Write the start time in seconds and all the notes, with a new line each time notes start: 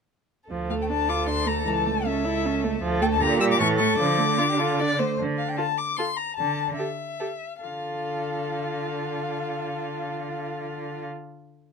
0.50 D2 F3 A4
0.70 A3 F5
0.82 G5
0.90 D4 A5
1.09 F4 D6
1.27 D4 C6
1.46 A3 A#5
1.66 C#2 E3 A5
1.86 A3
2.05 C#4 E5
2.25 E4
2.46 C#4
2.64 A3
2.82 D2 F3 A4
3.02 A3 G5
3.12 A5
3.20 A#2 D3 G4 A#5
3.40 G3 E6
3.52 D6
3.59 A2 E3 A4 C#6
3.80 A3 C#6
3.99 D3 F3 D6
4.19 A3
4.38 D4 F4
4.50 G4
4.58 F4 A4
4.80 D4 D5
4.99 A3 C5
5.19 D3
5.38 F5
5.49 G5
5.57 F4 A4 A5
5.78 D6
5.97 F4 A4 C6
6.17 A#5
6.37 D3 A5
6.77 G4 A4 E5
7.20 G4 A4
7.63 D3 F4 A4 F5